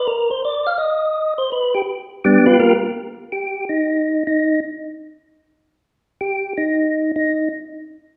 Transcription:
0.07 0.30 A#4 medium
0.31 0.43 C5 medium
0.45 0.67 D5 medium
0.67 0.79 F5 loud
0.78 1.34 D#5 medium
1.38 1.50 C5 loud
1.52 1.74 B4 medium
1.75 1.82 G4 loud
2.24 2.46 G3 medium
2.24 2.45 B3 medium
2.24 2.47 D4 medium
2.24 2.44 G4 medium
2.46 2.58 B3 medium
2.46 2.58 F4 medium
2.46 2.58 G4 medium
2.46 2.58 B4 loud
2.59 2.73 A#3 medium
2.59 2.73 F4 medium
2.59 2.74 G4 medium
2.59 2.74 A#4 loud
3.32 3.65 G4 medium
3.69 4.23 D#4 medium
4.27 4.60 D#4 loud
6.21 6.53 G4 medium
6.58 7.12 D#4 medium
7.16 7.49 D#4 medium

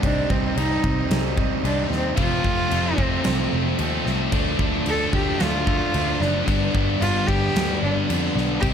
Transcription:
0.02 0.23 C2 loud
0.02 0.55 C3 loud
0.02 0.31 G3 loud
0.02 0.30 C4 loud
0.02 0.31 D4 medium
0.02 0.28 D#4 loud
0.02 kick loud
0.02 crash medium
0.29 0.50 C2 medium
0.29 0.56 G3 medium
0.29 0.59 C4 medium
0.29 0.57 C4 medium
0.29 0.58 D#4 medium
0.29 kick medium
0.56 0.76 C2 loud
0.56 1.09 C3 medium
0.56 0.85 G3 medium
0.56 0.85 C4 medium
0.56 1.11 D#4 loud
0.56 0.82 D#4 medium
0.56 crash medium
0.83 1.04 C2 loud
0.83 1.11 G3 medium
0.83 1.11 C4 medium
0.83 1.12 D#4 medium
0.83 kick loud
1.10 1.51 C2 loud
1.10 1.63 C3 loud
1.10 1.39 G3 medium
1.10 1.37 C4 medium
1.10 1.35 D#4 loud
1.10 snare loud
1.10 crash medium
1.36 1.64 G3 medium
1.36 1.65 C4 medium
1.36 1.66 D#4 medium
1.36 kick loud
1.63 1.84 C2 medium
1.63 2.15 C3 medium
1.63 2.16 G3 medium
1.63 2.17 C4 medium
1.63 1.89 D4 medium
1.63 2.17 D#4 medium
1.63 crash medium
1.91 2.11 D#2 medium
1.91 2.17 G3 medium
1.91 2.17 C4 medium
1.91 2.16 D#4 medium
1.91 snare soft
2.16 2.38 F1 loud
2.16 2.70 F2 loud
2.16 2.69 C3 loud
2.16 2.46 F3 loud
2.16 2.44 A3 loud
2.16 2.42 C4 loud
2.16 3.01 F4 loud
2.16 kick loud
2.16 crash medium
2.43 2.65 F1 medium
2.43 2.71 F3 medium
2.43 2.72 A3 medium
2.43 2.72 C4 medium
2.43 kick medium
2.70 2.92 F1 medium
2.70 3.25 F2 medium
2.70 3.23 C3 medium
2.70 2.99 F3 medium
2.70 2.98 A3 medium
2.70 2.95 C4 medium
2.70 crash medium
2.96 3.18 F1 loud
2.96 3.24 F3 medium
2.96 3.24 A3 medium
2.96 3.25 C4 medium
2.96 3.53 C4 medium
2.96 kick loud
3.24 3.46 C2 medium
3.24 3.78 F2 medium
3.24 3.78 C3 medium
3.24 3.54 F3 loud
3.24 3.53 A3 loud
3.24 3.52 C4 loud
3.24 snare loud
3.24 crash medium
3.53 3.73 F1 loud
3.53 3.79 F3 medium
3.53 3.80 A3 medium
3.53 3.81 C4 medium
3.79 3.99 D#2 medium
3.79 4.31 C3 medium
3.79 4.31 F3 medium
3.79 4.32 A3 medium
3.79 4.32 C4 medium
3.79 crash medium
4.05 4.27 C2 medium
4.05 4.32 F3 medium
4.05 4.31 A3 medium
4.05 4.31 C4 medium
4.05 snare soft
4.32 4.53 D2 loud
4.32 4.84 D3 loud
4.32 4.61 F3 loud
4.32 4.59 A3 loud
4.32 4.58 D4 loud
4.32 kick loud
4.32 crash medium
4.59 4.80 D2 medium
4.59 4.85 F3 medium
4.59 4.86 A3 medium
4.59 4.88 D4 medium
4.59 kick medium
4.85 5.07 D2 loud
4.85 5.37 D3 medium
4.85 5.14 F3 medium
4.85 5.12 A3 medium
4.85 5.11 D4 medium
4.85 5.13 A4 loud
4.85 crash medium
5.11 5.34 D2 medium
5.11 5.38 F3 medium
5.11 5.39 A3 medium
5.11 5.40 D4 medium
5.11 5.44 G4 loud
5.11 kick medium
5.38 5.82 D2 loud
5.38 5.90 D3 medium
5.38 5.67 F3 medium
5.38 5.65 A3 loud
5.38 5.64 D4 loud
5.38 snare loud
5.38 crash medium
5.42 6.24 F4 loud
5.65 5.91 F3 medium
5.65 5.92 A3 medium
5.65 5.93 D4 medium
5.65 kick medium
5.91 6.15 D2 loud
5.91 6.44 D3 medium
5.91 6.45 F3 medium
5.91 6.46 A3 medium
5.91 6.46 D4 loud
5.91 crash medium
6.20 6.41 F#1 medium
6.20 6.47 F3 medium
6.20 6.46 A3 medium
6.20 6.46 D4 medium
6.20 6.75 D4 medium
6.20 snare soft
6.44 6.68 G1 loud
6.44 7.00 G2 loud
6.44 6.98 D3 loud
6.44 6.75 G3 loud
6.44 6.72 B3 loud
6.44 6.70 D4 loud
6.44 kick loud
6.44 crash medium
6.72 6.95 G1 medium
6.72 7.00 G3 medium
6.72 7.01 B3 medium
6.72 7.01 D4 medium
6.72 kick medium
6.99 7.22 G1 loud
6.99 7.55 G2 medium
6.99 7.52 D3 medium
6.99 7.28 G3 medium
6.99 7.27 B3 medium
6.99 7.24 D4 medium
6.99 7.29 F4 loud
6.99 crash medium
7.25 7.49 G1 loud
7.25 7.53 G3 medium
7.25 7.54 B3 medium
7.25 7.55 D4 medium
7.25 7.82 G4 loud
7.25 kick loud
7.53 7.76 D2 medium
7.53 8.07 G2 medium
7.53 8.06 D3 loud
7.53 7.82 G3 loud
7.53 7.81 B3 medium
7.53 7.78 D4 loud
7.53 crash medium
7.57 snare loud
7.79 8.03 G1 medium
7.79 8.08 B3 medium
7.79 8.10 D4 medium
7.83 8.07 G3 medium
7.83 8.08 D4 medium
8.07 8.30 F2 medium
8.07 8.60 D3 medium
8.07 8.60 G3 medium
8.07 8.61 B3 medium
8.07 8.62 D4 medium
8.07 crash medium
8.35 8.56 B1 medium
8.35 8.62 G3 medium
8.35 8.62 B3 medium
8.35 8.61 D4 medium
8.35 snare soft
8.60 8.74 C2 medium
8.60 8.74 C3 medium
8.60 8.74 G3 loud
8.60 8.74 C4 loud
8.60 8.74 D#4 loud
8.60 8.69 G4 loud
8.60 kick loud
8.60 crash medium

